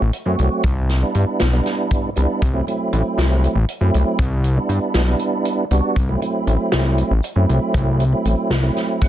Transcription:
0.01 A1
0.13 closed hi-hat, shaker
0.26 F#2 F#3 A3 C4 F#4
0.39 C2, closed hi-hat
0.63 C2, kick, closed hi-hat, shaker
0.89 snare, closed hi-hat
1.02 G3 B3 D4 E4
1.15 G2, closed hi-hat
1.40 B1, snare, closed hi-hat, shaker
1.53 G3 B3 D4 E4
1.66 snare, closed hi-hat
1.91 kick, closed hi-hat, shaker
2.16 C2 G3 B3 D4 E4, closed hi-hat, shaker
2.42 C2, kick, closed hi-hat, shaker
2.53 F#3 A3 C4 E4
2.67 F#3 A3 C4 E4, closed hi-hat
2.93 A1, closed hi-hat
3.18 C2, snare, closed hi-hat, shaker
3.44 closed hi-hat, shaker
3.55 A1
3.69 closed hi-hat, shaker
3.81 F#2 F#3 A3 C4 E4
3.94 C2, closed hi-hat
4.19 C2, kick, closed hi-hat, shaker
4.44 closed hi-hat
4.57 G3 B3 D4 E4
4.69 G2, closed hi-hat
4.94 B1, snare, closed hi-hat, shaker
5.08 G3 B3 D4 E4
5.19 closed hi-hat, shaker
5.45 closed hi-hat, shaker
5.71 C2 G3 B3 D4 F#4, closed hi-hat
5.96 C2, kick, closed hi-hat, shaker
6.09 F#3 A3 C4 E4
6.22 F#3 A3 C4 E4, closed hi-hat
6.47 A1, closed hi-hat
6.72 C2, snare, closed hi-hat, shaker
6.98 closed hi-hat, shaker
7.11 A1
7.23 closed hi-hat, shaker
7.36 F#2 F#3 A3 C4 E4
7.49 C2, closed hi-hat
7.74 C2, kick, closed hi-hat, shaker
8.00 closed hi-hat
8.13 F#3 A3 C4 E4
8.25 A1, closed hi-hat
8.50 C2, snare, closed hi-hat, shaker
8.63 F#3 A3 C4 E4
8.77 snare, closed hi-hat
9.01 F#5, kick, closed hi-hat, shaker

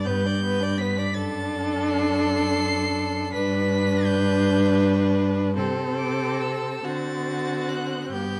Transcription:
0.05 G2 B3 B4 G6
0.25 D4 D5
0.41 B3 B4
0.60 D4 D5
0.78 B3 B4 B6
0.97 D4 D5
1.14 F#2 D4 A4 A6
1.88 C7
3.33 G2 D4 B4 B6
4.05 G6
5.57 C3 C4 A4
5.97 D6
6.41 E6
6.85 D3 C4 F#4 A6
7.69 F#6
8.12 G2 B3 G4 G6

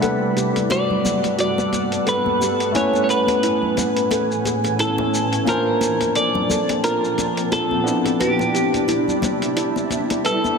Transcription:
Already playing: G3
0.00 G2 G3 A3 B3 A4 F#5, closed hi-hat, high conga, shaker
0.05 B4
0.36 G4, closed hi-hat, muted conga, shaker
0.56 closed hi-hat, high conga, shaker
0.70 F#4 D5, closed hi-hat, muted conga, shaker
0.90 low conga
1.05 high conga, low conga, shaker
1.24 closed hi-hat, muted conga, shaker
1.38 F#4 D5, closed hi-hat, shaker
1.58 muted conga, shaker
1.72 closed hi-hat, high conga, shaker
1.92 closed hi-hat, shaker
2.06 A4 B4, closed hi-hat, muted conga, shaker
2.26 high conga
2.41 G4, muted conga, shaker
2.60 closed hi-hat, shaker
2.72 A2 E3 A3 C#4 E4 C#5 G#5, closed hi-hat, high conga, shaker
2.77 B4
2.94 muted conga, shaker
3.04 C#5
3.09 B4, closed hi-hat, shaker
3.27 closed hi-hat, muted conga, high conga, shaker
3.43 E4, closed hi-hat, shaker
3.62 low conga
3.77 closed hi-hat, muted conga, high conga, low conga, shaker
3.96 closed hi-hat, shaker
4.11 A4, closed hi-hat, muted conga, shaker
4.32 shaker
4.45 G#4, closed hi-hat, high conga, shaker
4.64 closed hi-hat, muted conga, shaker
4.79 E4 A4, closed hi-hat, shaker
4.98 muted conga, high conga
5.14 shaker
5.33 closed hi-hat, shaker
5.45 A#2 F3 A#3 C4 D4 F4 A#4 A5, closed hi-hat, muted conga, high conga, shaker
5.50 C5
5.81 closed hi-hat, muted conga, shaker
6.01 closed hi-hat, high conga, shaker
6.15 A#4 D5, closed hi-hat, shaker
6.35 muted conga, low conga
6.50 A4, high conga, low conga, shaker
6.69 closed hi-hat, muted conga, shaker
6.84 F4 A#4, closed hi-hat, shaker
7.04 shaker
7.18 closed hi-hat, muted conga, high conga, shaker
7.37 closed hi-hat, shaker
7.52 F4 A4, closed hi-hat, muted conga, shaker
7.71 high conga
7.84 C3 G3 B3 D4 E4, shaker
8.06 closed hi-hat, muted conga, shaker
8.20 G4 B4, closed hi-hat, high conga, shaker
8.39 muted conga, shaker
8.54 G4, closed hi-hat, shaker
8.74 closed hi-hat, high conga, shaker
8.88 E4, closed hi-hat, muted conga, shaker
9.08 low conga, shaker
9.22 closed hi-hat, muted conga, high conga, low conga, shaker
9.42 closed hi-hat, shaker
9.57 E4, closed hi-hat, shaker
9.76 muted conga, shaker
9.90 closed hi-hat, high conga, shaker
10.10 closed hi-hat, muted conga, shaker
10.24 A4 B4, closed hi-hat, shaker
10.44 high conga, shaker

